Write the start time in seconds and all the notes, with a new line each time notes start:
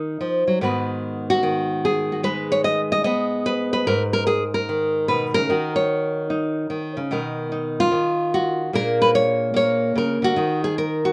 Already playing: D#3 D#4 A#4
0.21 F3
0.47 F#3
0.61 G#2 D#3 B3 F#4 B4
1.30 F#4
1.43 D#3
1.85 G#4
2.12 F#4
2.23 G#3 B4
2.52 C#5
2.64 D#5
2.92 D#5
3.04 B3 D#5
3.46 B4
3.73 B4
3.87 G#2 A#4
4.13 A#4
4.27 G#4
4.54 A#4
4.69 D#3
5.08 B2 B4
5.34 C#3 A#4
5.50 D#3 D#4 F#4
5.76 C#5
6.30 D#4
6.70 D#3
6.97 C#3
7.11 B2 D#3 D#4 A#4
7.52 D#4
7.80 F4
7.91 D#3
8.34 F#4
8.73 A#2 A#3 D4 G#4 A#4
9.02 B4
9.15 C#5
9.54 A#3 C#5
9.96 C#3 A#4
10.22 D3 F#4
10.36 D#3 D#4
10.64 G#4
10.78 A#4
11.05 F#4